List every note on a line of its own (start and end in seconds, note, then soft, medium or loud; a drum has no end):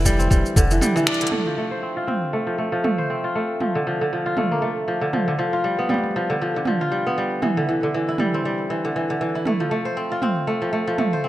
0.00 0.28 F1 medium
0.00 0.56 D3 medium
0.00 0.61 E3 medium
0.00 0.25 B3 medium
0.00 1.52 E4 medium
0.00 shaker soft
0.03 0.29 G3 medium
0.03 kick medium
0.03 shaker soft
0.05 shaker medium
0.09 shaker soft
0.12 shaker soft
0.17 1.82 C4 medium
0.17 shaker soft
0.20 shaker soft
0.30 0.43 F1 medium
0.30 0.61 G3 medium
0.30 kick loud
0.30 shaker soft
0.46 shaker soft
0.56 0.81 F1 medium
0.56 1.20 D3 medium
0.56 kick loud
0.56 shaker medium
0.71 0.95 E3 medium
0.71 shaker soft
0.81 1.25 G3 medium
0.81 mid tom medium
0.81 shaker soft
0.96 1.25 E3 loud
0.96 shaker soft
1.07 2.75 D4 medium
1.07 finger snap medium
1.07 closed hi-hat soft
1.14 closed hi-hat medium
1.21 1.38 D3 medium
1.21 closed hi-hat medium
1.27 closed hi-hat medium
1.32 1.57 A3 medium
1.32 mid tom medium
1.46 2.46 F3 medium
1.58 2.33 A3 medium
1.71 2.90 C5 medium
1.83 2.07 C4 medium
1.97 3.24 F4 medium
2.07 3.10 C4 medium
2.07 mid tom medium
2.33 2.58 A3 medium
2.47 2.71 F3 medium
2.58 2.83 A3 medium
2.72 3.41 F3 medium
2.84 3.35 A3 medium
2.84 mid tom medium
2.98 4.17 C5 medium
3.10 4.90 C4 medium
3.24 4.25 F4 medium
3.35 4.37 A3 medium
3.60 3.79 F3 medium
3.60 mid tom medium
3.75 4.00 D3 medium
3.87 4.05 F3 medium
4.01 5.00 D3 medium
4.13 4.86 F3 medium
4.26 5.52 F4 medium
4.37 4.57 A3 medium
4.37 mid tom medium
4.51 4.68 A#3 medium
4.62 6.61 A3 medium
4.88 5.06 F3 medium
5.01 5.26 D3 medium
5.13 5.32 F3 medium
5.13 mid tom medium
5.28 5.44 D3 medium
5.39 6.15 F3 medium
5.53 6.81 F4 medium
5.64 5.88 G3 medium
5.79 7.06 B3 medium
5.89 6.33 G3 medium
5.89 mid tom medium
5.94 mid tom soft
5.98 mid tom soft
6.04 mid tom soft
6.06 mid tom soft
6.11 mid tom soft
6.16 6.33 F3 medium
6.30 6.55 D3 medium
6.42 6.59 F3 medium
6.56 7.48 D3 medium
6.65 7.48 F3 medium
6.65 mid tom medium
6.81 7.48 F4 medium
6.92 7.16 G3 medium
7.07 8.40 B3 medium
7.18 7.48 G3 medium
7.42 7.60 E3 medium
7.42 mid tom medium
7.57 7.82 D3 medium
7.69 7.86 E3 medium
7.83 8.83 D3 medium
7.94 8.69 E3 medium
8.09 9.35 E4 medium
8.18 8.44 G3 medium
8.18 mid tom medium
8.34 9.96 C4 medium
8.45 8.88 G3 medium
8.70 8.88 E3 medium
8.85 9.09 D3 medium
8.96 9.13 E3 medium
9.10 9.51 D3 medium
9.21 9.51 E3 medium
9.35 9.66 E4 medium
9.45 9.71 A3 medium
9.45 mid tom medium
9.60 10.60 F3 medium
9.71 10.47 A3 medium
9.85 11.04 C5 medium
9.97 10.22 C4 medium
10.12 11.29 F4 medium
10.22 11.24 C4 medium
10.22 mid tom medium
10.47 10.72 A3 medium
10.62 10.86 F3 medium
10.73 10.98 A3 medium
10.87 11.29 F3 medium
10.98 11.29 A3 medium
10.98 mid tom medium
11.13 11.29 C5 medium
11.24 11.29 C4 medium